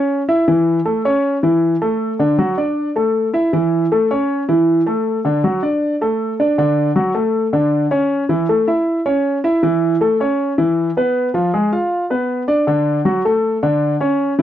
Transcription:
Already playing: C#4 C#5
0.29 E4 E5
0.48 E3 E4
0.85 A3 A4
1.05 C#4 C#5
1.43 E3 E4
1.82 A3 A4
2.19 D3 D4
2.38 F#3 F#4
2.58 D4 D5
2.96 A3 A4
3.34 E4 E5
3.53 E3 E4
3.92 A3 A4
4.11 C#4 C#5
4.49 E3 E4
4.86 A3 A4
5.25 D3 D4
5.44 F#3 F#4
5.63 D4 D5
6.01 A3 A4
6.40 D4 D5
6.58 D3 D4
6.96 F#3 F#4
7.14 A3 A4
7.53 D3 D4
7.91 C#4 C#5
8.29 E3 E4
8.49 A3 A4
8.68 E4 E5
9.06 C#4 C#5
9.44 E4 E5
9.63 E3 E4
10.01 A3 A4
10.20 C#4 C#5
10.58 E3 E4
10.97 B3 B4
11.34 F3 F4
11.54 G#3 G#4
11.73 F4 F5
12.10 B3 B4
12.48 D4 D5
12.67 D3 D4
13.05 F#3 F#4
13.25 A3 A4
13.63 D3 D4
14.00 C#4 C#5
14.39 E3 E4

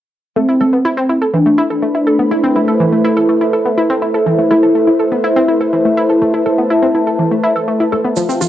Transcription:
0.36 A3 C4 E4 A4 B4 C5
0.49 E4
0.57 A3 E4 A4 E5
0.73 B3 B5
0.85 E4
0.97 C4
1.09 E4
1.22 A4
1.34 E3 D4
1.46 A3
1.58 E4
1.70 A4
1.83 A3
1.95 E4
2.07 A4
2.19 B3
2.31 A3 E4 A4
2.44 C4
2.56 A3 E4 A4
2.68 A4
2.80 E3 E4
2.92 A3
3.04 E4
3.17 A4
3.29 A3
3.41 E4
3.53 A4
3.66 B3
3.78 E4
3.90 C4
4.02 E4
4.14 A4
4.26 E3 A3 E4 A4
4.39 A3
4.51 A3 E4 A4
4.63 A4
4.75 A3
4.87 E4
5.00 A4
5.04 A5
5.12 B3
5.24 E4
5.36 C4
5.48 E4
5.61 A4
5.73 E3
5.85 A3
5.97 E4
6.09 A4
6.21 A3 E4 A4
6.34 E4
6.46 A3 E4 A4
6.58 B3
6.70 E4
6.83 C4
6.95 E4
7.07 A4
7.19 E3
7.31 A3
7.43 E4
7.56 A4
7.68 A3
7.80 E4
7.92 A3 E4 A4
8.05 B3
8.16 F3 C4 F4 G4 A4, shaker
8.29 C4, shaker
8.41 F3 C4 F4, shaker

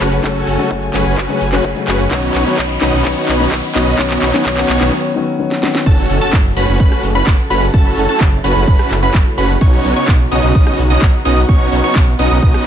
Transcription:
Already playing: C#3 F#3 A3 C#4 F#4 A4 C#5 A5, riser
0.00 F#1 C#4 F#4 B4, clap, open hi-hat
0.12 closed hi-hat
0.23 F#1 C#3 F#3 A3 C#4 F#4 A4 G#5, kick, clap, closed hi-hat
0.35 closed hi-hat
0.47 F#1, open hi-hat
0.58 C#3 F#3 A3 C#4 F#4 A4, closed hi-hat
0.71 F#1, kick, closed hi-hat
0.82 closed hi-hat
0.93 F#1 C#3 F#3 A3 C#4 F#4 B4, clap, open hi-hat
1.06 F#1, closed hi-hat
1.17 F#1 C#4 F#4 B4, kick, clap, closed hi-hat
1.29 C#3 F#3 A3 C#4, closed hi-hat
1.41 F#1, open hi-hat
1.52 C#3 F#3 A3 C#4 F#4 B4, clap, closed hi-hat
1.64 F#1, kick, closed hi-hat
1.75 C#3 F#3 A3 C#4, closed hi-hat
1.88 F#1 C#4 F#4 B4, clap, open hi-hat
2.00 closed hi-hat
2.11 B1 D#3 F#3 B3 C#4 D#4 F#4 C#5 D#5 B5, kick, clap, closed hi-hat
2.23 closed hi-hat
2.35 B1, clap, open hi-hat
2.46 D#3 F#3 B3 C#4 D#4 F#4 C#5, closed hi-hat
2.58 B1, kick, clap, closed hi-hat
2.70 closed hi-hat
2.81 B1 D#3 F#3 B3 C#4 D#4 F#4 D#5, clap, open hi-hat
2.93 B1, closed hi-hat
3.04 B1 D#3 F#3 B3 C#4 D#4 F#4 C#5, kick, clap, closed hi-hat
3.17 closed hi-hat
3.28 B1, clap, open hi-hat
3.39 D#3 F#3 B3 C#4 D#4 F#4 C#5, closed hi-hat
3.52 B1, kick, clap, closed hi-hat
3.64 closed hi-hat
3.75 B1 D#3 F#3 B3 C#4 D#4 F#4 D#5, clap, open hi-hat
3.87 closed hi-hat
3.98 B1 D#3 F#3 B3 C#4 D#4 F#4 C#5, kick, clap, closed hi-hat
4.10 clap, closed hi-hat
4.22 B1, clap, open hi-hat
4.33 D#3 F#3 B3 C#4 D#4 F#4 C#5, clap, closed hi-hat
4.45 B1 D#3 F#3 B3 C#4 D#4 F#4 C#5, kick, clap, closed hi-hat
4.57 clap, closed hi-hat
4.69 B1, clap, open hi-hat
4.80 B1 D#3 F#3 B3 C#4 D#4 F#4 C#5, clap, closed hi-hat
4.92 D#3 F#3 B3 C#4
5.15 D#3 F#3 B3 C#4
5.39 D#3 F#3 B3 C#4
5.51 snare
5.62 D#3 F#3 B3 C#4, snare
5.75 snare
5.86 F#1 C#3 F#3 A3 C#4 F#4 A4 A5, kick, closed hi-hat, crash, impact
6.10 F#1, open hi-hat
6.21 C#4 F#4 A4 A5, closed hi-hat
6.33 F#1, kick, clap, closed hi-hat
6.45 closed hi-hat
6.57 F#1 C#4 F#4 B4 B5, open hi-hat
6.68 F#1, closed hi-hat
6.80 F#1 C#4 F#4 B4 B5, kick, closed hi-hat
6.92 cross-stick
7.03 F#1, open hi-hat
7.15 C#4 F#4 B4 B5, closed hi-hat
7.27 F#1, kick, clap, closed hi-hat
7.39 closed hi-hat
7.50 F#1 C#4 F#4 B4 B5, open hi-hat
7.62 closed hi-hat
7.74 F#1 C#4 E4 F#4 A4 A5, kick, closed hi-hat
7.97 F#1, open hi-hat
8.09 C#4 F#4 A4 A5, closed hi-hat
8.21 F#1, kick, clap, closed hi-hat
8.32 closed hi-hat
8.44 F#1 C#4 F#4 B4 B5, open hi-hat
8.56 F#1, closed hi-hat
8.67 F#1 C#4 F#4 B4 B5, kick, closed hi-hat
8.79 cross-stick
8.91 F#1, clap, open hi-hat
9.03 C#4 F#4 B4 B5, closed hi-hat
9.14 F#1, kick, clap, closed hi-hat
9.26 closed hi-hat
9.38 F#1 C#4 F#4 B4 B5, open hi-hat
9.49 closed hi-hat
9.61 B1 B3 C#4 D#4 F#4 C#5 C#6, kick, closed hi-hat
9.85 B1, open hi-hat
9.96 B3 C#4 D#4 F#4 C#5 C#6, closed hi-hat
10.08 B1, kick, clap, closed hi-hat
10.20 closed hi-hat
10.32 B1 B3 C#4 D#4 F#4 D#5 D#6, open hi-hat
10.43 B1, closed hi-hat
10.55 B1 B3 C#4 D#4 F#4 D#5 D#6, kick, closed hi-hat
10.67 cross-stick
10.78 B1, open hi-hat
10.90 B3 C#4 D#4 F#4 D#5 D#6, closed hi-hat
11.02 B1, kick, clap, closed hi-hat
11.14 closed hi-hat
11.25 B1 B3 C#4 D#4 F#4 D#5 D#6, open hi-hat
11.37 closed hi-hat
11.49 B1 B3 C#4 D#4 F#4 C#5 C#6, kick, closed hi-hat
11.72 B1, open hi-hat
11.84 B3 C#4 D#4 F#4 C#5 C#6, closed hi-hat
11.96 B1, kick, clap, closed hi-hat
12.07 closed hi-hat
12.19 B1 B3 C#4 D#4 F#4 D#5 D#6, open hi-hat
12.31 B1, closed hi-hat
12.42 B1 B3 C#4 D#4 F#4 D#5 D#6, kick, closed hi-hat
12.54 cross-stick

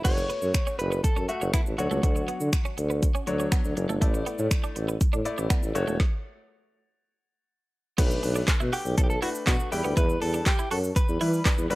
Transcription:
0.04 F#1 A3 F#4 C#5, kick, closed hi-hat, crash, shaker
0.17 muted clean electric guitar stroke, shaker
0.30 B3, closed hi-hat, shaker
0.42 F#2, shaker
0.54 finger snap, kick, closed hi-hat, shaker
0.67 C#4, shaker
0.79 F#1 B4, muted clean electric guitar stroke, closed hi-hat, shaker
0.92 B3, shaker
1.04 F#2 A4, kick, closed hi-hat, shaker
1.16 F#2 C#4, shaker
1.29 A3 F#4 E5, muted clean electric guitar stroke, closed hi-hat, shaker
1.41 F#1 C#4, shaker
1.54 B3 E4, finger snap, kick, closed hi-hat, shaker
1.66 A1, shaker
1.78 D2 F#3 D4 F#4 C#5, muted clean electric guitar stroke, closed hi-hat, shaker
1.91 C#2 A3, shaker
2.03 D2 D4, kick, closed hi-hat, shaker
2.16 muted clean electric guitar stroke, shaker
2.28 B3, closed hi-hat, shaker
2.40 D3, shaker
2.53 finger snap, kick, closed hi-hat, shaker
2.65 C#4, shaker
2.78 D2, muted clean electric guitar stroke, closed hi-hat, shaker
2.90 B3, shaker
3.03 kick, closed hi-hat, shaker
3.15 C#4, shaker
3.27 D2 F#3 D4 C#5, muted clean electric guitar stroke, closed hi-hat, shaker
3.40 C#4, shaker
3.52 B3, finger snap, kick, closed hi-hat, shaker
3.64 D2, shaker
3.77 F#1, muted clean electric guitar stroke, closed hi-hat, shaker
3.89 G1 A3, shaker
4.01 A1 A3 E4 D5, kick, closed hi-hat, shaker
4.14 muted clean electric guitar stroke, shaker
4.26 B3, closed hi-hat, shaker
4.38 A2, shaker
4.51 finger snap, kick, closed hi-hat, shaker
4.64 D4, shaker
4.76 A1, muted clean electric guitar stroke, closed hi-hat, shaker
4.88 B3, shaker
5.01 A2, kick, closed hi-hat, shaker
5.13 A2 D4, shaker
5.25 A3 E4 D5, muted clean electric guitar stroke, closed hi-hat, shaker
5.38 A1 D4, shaker
5.50 B3, finger snap, kick, closed hi-hat, shaker
5.63 A1, shaker
5.75 F#1 A3 F#4 C#5, muted clean electric guitar stroke, closed hi-hat, shaker
5.87 E1 A3, shaker
6.00 kick, snare
7.98 B1 A3 B3 D4 B4, kick, closed hi-hat, crash, shaker
8.11 shaker
8.23 B1, muted clean electric guitar stroke, open hi-hat, shaker
8.35 D4, shaker
8.48 B2, muted clean electric guitar stroke, kick, snare, clap, closed hi-hat, tambourine, shaker
8.60 B2 E4, shaker
8.73 F#4 G4, open hi-hat, shaker
8.85 B1, shaker
8.98 B1 A4, kick, closed hi-hat, shaker
9.04 G4
9.10 A4, shaker
9.22 A3 D4 E4 F#4 B4, open hi-hat, shaker
9.35 shaker
9.47 B2 D4 F#4, kick, snare, clap, closed hi-hat, tambourine, shaker
9.60 shaker
9.72 E2 G3 E4 G4 B4, muted clean electric guitar stroke, open hi-hat, shaker
9.84 D2 B3, shaker
9.97 E2 E4 B4, kick, closed hi-hat, shaker
10.09 shaker
10.22 E2 A4, muted clean electric guitar stroke, open hi-hat, shaker
10.34 D4, shaker
10.46 G4, muted clean electric guitar stroke, kick, snare, clap, closed hi-hat, tambourine, shaker
10.59 E4, shaker
10.71 F#2 F#4 A4, open hi-hat, shaker
10.84 shaker
10.96 B4, kick, closed hi-hat, shaker
11.08 E2, shaker
11.21 E3 G3 E4 B4, open hi-hat, shaker
11.33 shaker
11.45 D4, kick, snare, clap, closed hi-hat, tambourine, shaker
11.58 E2, shaker
11.70 G1 G3 F#4 B4, muted clean electric guitar stroke, open hi-hat, shaker

